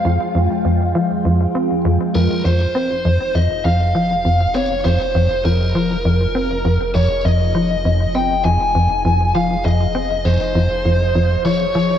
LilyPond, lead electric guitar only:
\new Staff \with { instrumentName = "Lead electric guitar" } { \time 4/4 \key f \minor \tempo 4 = 100 f''2. r8 bes'8 | c''4. ees''8 f''4. des''8 | c''4 bes'2~ bes'8 des''8 | ees''4. g''8 aes''4. f''8 |
ees''4 c''2 des''4 | }